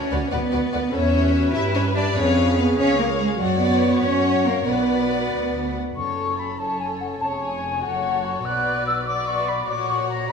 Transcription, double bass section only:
0.11 D2
0.32 D2
0.53 D2
0.73 D2
0.93 E2
1.55 G2
2.17 F2
2.79 C#2
3.40 F#2
4.03 F#2
4.67 B1
5.31 D2
5.95 F#1
7.21 F1
7.83 F#1
8.45 B1
9.68 A#1

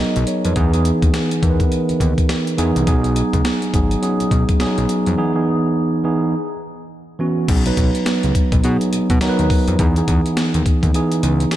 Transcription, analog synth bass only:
0.16 B1
0.45 F2
0.56 E2
1.03 D#2
1.43 E2
1.90 D#2
2.01 D#2
2.59 E2
2.76 C2
2.87 B1
3.34 C#2
3.74 G#1
4.20 B1
4.31 B1
4.60 B1
4.78 B1
5.07 F2
7.49 B1
7.78 B1
8.24 C#2
8.52 B1
8.64 B2
8.93 B2
9.10 B2
9.22 D#2
9.39 D#2
9.68 F2
9.79 E2
10.08 E2
10.54 D#2
10.83 D#2
11.23 C#2

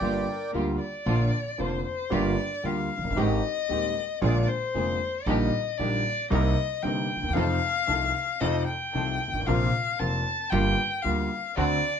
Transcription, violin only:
Already playing: G4
0.27 A#4
0.80 D5
1.60 C5
1.85 C5
2.12 D5
2.65 F5
3.18 D#5
4.23 D5
4.48 C5
5.27 D#5
5.78 D5
6.31 D#5
6.83 G5
7.34 F5
8.40 D#5
8.67 G5
9.47 F5
9.99 A5
10.50 G5
11.02 F5
11.55 D5

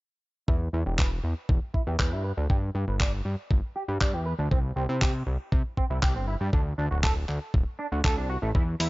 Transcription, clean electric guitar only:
0.48 E4
0.73 E4
0.86 G4
0.99 B4
1.74 E4
1.87 G4
1.99 B4
2.12 E4
2.24 B4
2.37 D4
2.50 G4
2.75 G4
2.88 B4
3.00 D5
3.76 G4
3.89 B4
4.01 D5
4.14 G4
4.26 B4
4.39 D4
4.51 C4
4.76 C4
4.89 E4
5.02 G4
5.77 C4
5.90 E4
6.02 G4
6.16 C4
6.28 E4
6.41 G3
6.53 D4
6.78 D4
6.91 F#4
7.03 A4
7.79 D4
7.92 F#4
8.05 A4
8.17 D4
8.30 F#4
8.43 A3
8.55 E4
8.80 E4

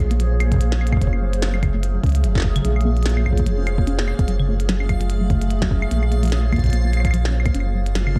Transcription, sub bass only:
Already playing: A#1
1.01 F#1
2.03 C#2
2.24 F#1
2.65 A#1
3.46 F1
4.19 F1
4.28 F#1
5.91 A#1
7.55 F#1

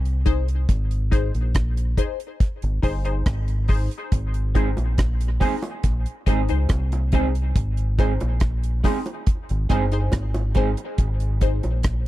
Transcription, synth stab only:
0.26 D#4 G#4 C5
1.11 D#4 G#4 C5
1.98 D#4 G#4 C5
2.82 D#4 G#4 C5
3.05 D#4 G#4 C5
3.69 D#4 G#4 C5
4.55 D#4 G#4 C5
5.41 D#4 G#4 C5
6.26 D#4 G#4 C5
6.49 D#4 G#4 C5
7.13 D#4 G#4 C5
7.99 D#4 G#4 C5
8.84 D#4 G#4 C5
9.70 D#4 G#4 C5
9.92 D#4 G#4 C5
10.55 D#4 G#4 C5
11.41 D#4 G#4 C5

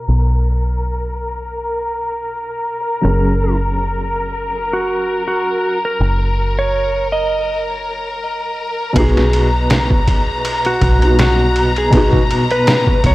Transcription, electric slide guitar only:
3.05 A#4
4.73 F#4
5.28 F#4
5.85 A#4
6.59 C#5
7.12 D#5
8.98 G#4
10.66 F#4
11.20 F#4
11.78 G#4
12.52 B4
13.06 C#5

